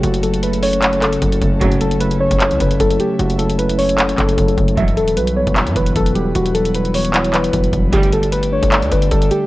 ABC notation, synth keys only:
X:1
M:4/4
L:1/8
Q:1/4=152
K:F#phr
V:1 name="Synth keys"
F A B c2 A3 | F A B c2 B A G | F A B c2 A3 | e A B c2 B A G |
F A B c2 B3 | G A B c2 B A G |]